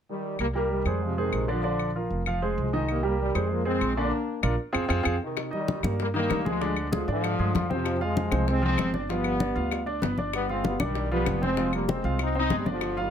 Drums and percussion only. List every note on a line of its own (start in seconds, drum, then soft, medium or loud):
0.39 claves medium
0.86 claves medium
1.33 claves medium
1.79 claves medium
2.26 claves medium
2.89 claves medium
3.35 claves medium
3.81 claves medium
4.43 claves medium
4.75 claves medium
4.90 claves medium
5.05 claves loud
5.37 high bongo medium
5.37 high conga soft
5.37 claves medium
5.53 high conga soft
5.68 high bongo medium
5.68 high conga medium
5.83 high conga loud
5.83 claves medium
6.00 high bongo medium
6.00 high conga soft
6.15 high conga soft
6.30 high bongo medium
6.30 low bongo medium
6.30 high conga medium
6.30 claves medium
6.46 high conga medium
6.62 high bongo medium
6.62 high conga soft
6.76 high bongo soft
6.76 high conga soft
6.76 claves medium
6.93 high bongo medium
6.93 high conga medium
7.08 high bongo soft
7.08 high conga soft
7.24 high bongo medium
7.24 high conga soft
7.24 claves medium
7.39 high conga soft
7.55 high bongo medium
7.55 low bongo medium
7.55 high conga medium
7.71 high bongo soft
7.71 high conga medium
7.85 high bongo medium
7.85 high conga soft
7.85 claves medium
8.01 high conga soft
8.17 high bongo medium
8.17 high conga medium
8.32 high conga medium
8.32 claves medium
8.48 high bongo medium
8.48 high conga soft
8.63 high conga soft
8.78 high bongo medium
8.78 low bongo medium
8.78 high conga medium
8.78 claves medium
8.94 high conga medium
9.09 high bongo medium
9.09 high conga soft
9.24 high bongo soft
9.24 high conga soft
9.24 claves medium
9.40 high bongo medium
9.40 high conga loud
9.56 high bongo soft
9.56 high conga soft
9.71 high bongo medium
9.71 high conga soft
9.71 claves medium
9.87 high conga soft
10.02 high bongo medium
10.02 low bongo medium
10.02 high conga medium
10.18 high bongo soft
10.18 high conga medium
10.33 high bongo medium
10.33 high conga soft
10.33 claves medium
10.49 high conga soft
10.64 high bongo medium
10.64 high conga loud
10.80 high conga medium
10.80 claves medium
10.95 high bongo medium
10.95 high conga soft
11.12 high conga soft
11.26 high bongo medium
11.26 low bongo medium
11.26 high conga medium
11.26 claves medium
11.43 high conga medium
11.57 high bongo medium
11.57 high conga soft
11.73 high bongo soft
11.73 high conga soft
11.73 claves medium
11.89 high bongo medium
11.89 high conga medium
12.04 high bongo soft
12.04 high conga soft
12.19 high bongo medium
12.19 high conga soft
12.19 claves medium
12.35 high conga soft
12.50 high bongo medium
12.50 low bongo medium
12.50 high conga medium
12.66 high bongo soft
12.66 high conga medium
12.81 high bongo medium
12.81 high conga soft
12.81 claves medium
12.97 high conga soft